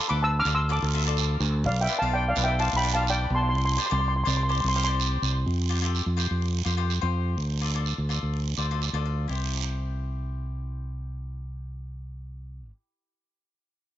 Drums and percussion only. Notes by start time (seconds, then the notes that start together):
0.45 short guiro
0.70 long guiro
1.17 short guiro
1.41 short guiro
1.64 long guiro
1.88 short guiro
2.36 short guiro
2.60 long guiro
3.07 short guiro
3.55 long guiro
3.80 short guiro
4.27 short guiro
4.52 long guiro
5.00 short guiro
5.23 short guiro
5.47 long guiro
5.95 short guiro
6.19 short guiro
6.42 long guiro
6.66 short guiro
6.90 short guiro
7.38 long guiro
7.86 short guiro
8.10 short guiro
8.34 long guiro
8.57 short guiro
8.82 short guiro
9.29 long guiro